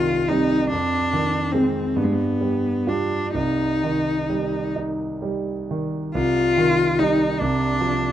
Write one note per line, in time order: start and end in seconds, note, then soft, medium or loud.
0.00 0.67 C2 medium
0.00 0.54 D#3 soft
0.00 0.30 F4 medium
0.28 0.67 G3 soft
0.28 0.67 C4 soft
0.28 0.69 D#4 medium
0.70 1.93 F2 medium
0.70 1.54 D4 medium
1.13 1.80 D#3 soft
1.52 1.93 G#3 soft
1.52 1.98 C4 medium
1.52 1.93 C4 soft
1.96 3.31 G2 soft
1.96 2.05 B3 medium
2.03 2.13 G#3 soft
2.12 2.90 B3 medium
2.41 2.85 G3 soft
2.87 3.31 G3 soft
2.87 3.35 D4 medium
2.87 3.31 F4 soft
3.34 6.11 C2 soft
3.34 4.73 D#4 medium
3.83 4.57 D#3 soft
4.30 5.04 G3 soft
4.76 5.52 D#4 soft
5.22 5.98 G3 soft
5.71 6.15 D#3 soft
6.15 7.36 C2 medium
6.15 7.01 F4 medium
6.57 7.24 D#3 medium
6.99 7.37 G3 soft
6.99 7.43 D#4 medium
6.99 7.37 D#4 soft
7.41 8.12 C2 medium
7.41 8.12 D4 medium
7.81 8.12 F3 soft